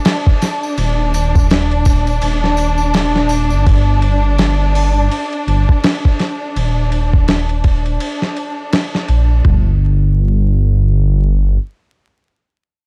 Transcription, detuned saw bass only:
0, 0, Header, 1, 2, 480
1, 0, Start_track
1, 0, Tempo, 722892
1, 515, Time_signature, 4, 2, 24, 8
1, 8542, End_track
2, 0, Start_track
2, 0, Title_t, "Detuned saw bass"
2, 0, Program_c, 0, 39
2, 516, Note_on_c, 0, 27, 98
2, 1456, Note_off_c, 0, 27, 0
2, 1474, Note_on_c, 0, 27, 99
2, 2341, Note_on_c, 0, 31, 97
2, 2351, Note_off_c, 0, 27, 0
2, 2426, Note_off_c, 0, 31, 0
2, 2434, Note_on_c, 0, 31, 94
2, 3376, Note_off_c, 0, 31, 0
2, 3634, Note_on_c, 0, 31, 81
2, 3759, Note_off_c, 0, 31, 0
2, 4356, Note_on_c, 0, 27, 93
2, 5297, Note_off_c, 0, 27, 0
2, 6035, Note_on_c, 0, 34, 76
2, 6251, Note_off_c, 0, 34, 0
2, 6274, Note_on_c, 0, 31, 87
2, 7688, Note_off_c, 0, 31, 0
2, 8542, End_track
0, 0, End_of_file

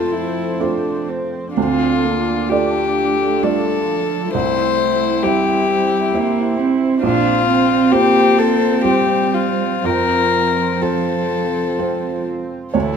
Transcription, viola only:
0, 0, Header, 1, 2, 480
1, 0, Start_track
1, 0, Tempo, 963082
1, 781, Tempo, 931677
1, 782, Time_signature, 3, 2, 24, 8
1, 1741, Tempo, 900901
1, 4621, Tempo, 974026
1, 6657, End_track
2, 0, Start_track
2, 0, Title_t, "Viola"
2, 0, Program_c, 0, 41
2, 0, Note_on_c, 0, 65, 50
2, 60, Note_on_c, 0, 64, 47
2, 68, Note_off_c, 0, 65, 0
2, 302, Note_on_c, 0, 62, 50
2, 309, Note_off_c, 0, 64, 0
2, 543, Note_on_c, 0, 60, 44
2, 550, Note_off_c, 0, 62, 0
2, 782, Note_off_c, 0, 60, 0
2, 788, Note_on_c, 0, 62, 45
2, 2206, Note_off_c, 0, 62, 0
2, 2225, Note_on_c, 0, 64, 49
2, 3639, Note_off_c, 0, 64, 0
2, 3670, Note_on_c, 0, 60, 65
2, 5098, Note_off_c, 0, 60, 0
2, 5116, Note_on_c, 0, 60, 52
2, 5583, Note_off_c, 0, 60, 0
2, 5593, Note_on_c, 0, 60, 43
2, 6427, Note_off_c, 0, 60, 0
2, 6548, Note_on_c, 0, 64, 48
2, 6657, Note_off_c, 0, 64, 0
2, 6657, End_track
0, 0, End_of_file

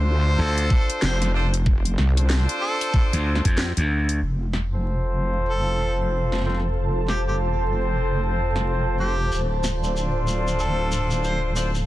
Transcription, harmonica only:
0, 0, Header, 1, 2, 480
1, 0, Start_track
1, 0, Tempo, 638298
1, 1250, Time_signature, 4, 2, 24, 8
1, 8919, End_track
2, 0, Start_track
2, 0, Title_t, "Harmonica"
2, 0, Program_c, 0, 22
2, 285, Note_on_c, 0, 69, 91
2, 673, Note_off_c, 0, 69, 0
2, 767, Note_on_c, 0, 72, 85
2, 901, Note_off_c, 0, 72, 0
2, 1966, Note_on_c, 0, 69, 97
2, 2354, Note_off_c, 0, 69, 0
2, 4129, Note_on_c, 0, 69, 85
2, 4516, Note_off_c, 0, 69, 0
2, 5329, Note_on_c, 0, 67, 83
2, 5423, Note_off_c, 0, 67, 0
2, 5475, Note_on_c, 0, 67, 71
2, 5536, Note_off_c, 0, 67, 0
2, 6769, Note_on_c, 0, 67, 82
2, 7067, Note_off_c, 0, 67, 0
2, 7971, Note_on_c, 0, 69, 81
2, 8356, Note_off_c, 0, 69, 0
2, 8450, Note_on_c, 0, 72, 80
2, 8582, Note_off_c, 0, 72, 0
2, 8919, End_track
0, 0, End_of_file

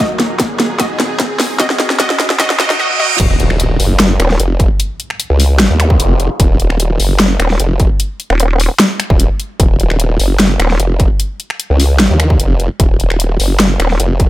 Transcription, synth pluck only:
0, 0, Header, 1, 2, 480
1, 0, Start_track
1, 0, Time_signature, 4, 2, 24, 8
1, 0, Key_signature, -6, "minor"
1, 0, Tempo, 400000
1, 17154, End_track
2, 0, Start_track
2, 0, Title_t, "Synth pluck"
2, 0, Program_c, 0, 84
2, 0, Note_on_c, 0, 66, 70
2, 0, Note_on_c, 0, 75, 90
2, 327, Note_off_c, 0, 66, 0
2, 327, Note_off_c, 0, 75, 0
2, 955, Note_on_c, 0, 66, 73
2, 955, Note_on_c, 0, 75, 95
2, 1287, Note_off_c, 0, 66, 0
2, 1287, Note_off_c, 0, 75, 0
2, 1916, Note_on_c, 0, 66, 72
2, 1916, Note_on_c, 0, 75, 96
2, 2248, Note_off_c, 0, 66, 0
2, 2248, Note_off_c, 0, 75, 0
2, 2396, Note_on_c, 0, 66, 76
2, 2396, Note_on_c, 0, 75, 102
2, 2728, Note_off_c, 0, 66, 0
2, 2728, Note_off_c, 0, 75, 0
2, 2876, Note_on_c, 0, 66, 78
2, 2876, Note_on_c, 0, 75, 101
2, 3098, Note_off_c, 0, 66, 0
2, 3098, Note_off_c, 0, 75, 0
2, 3116, Note_on_c, 0, 66, 74
2, 3116, Note_on_c, 0, 75, 103
2, 3338, Note_off_c, 0, 66, 0
2, 3338, Note_off_c, 0, 75, 0
2, 3355, Note_on_c, 0, 66, 78
2, 3355, Note_on_c, 0, 75, 102
2, 3577, Note_off_c, 0, 66, 0
2, 3577, Note_off_c, 0, 75, 0
2, 3597, Note_on_c, 0, 66, 83
2, 3597, Note_on_c, 0, 75, 104
2, 3818, Note_off_c, 0, 66, 0
2, 3818, Note_off_c, 0, 75, 0
2, 17154, End_track
0, 0, End_of_file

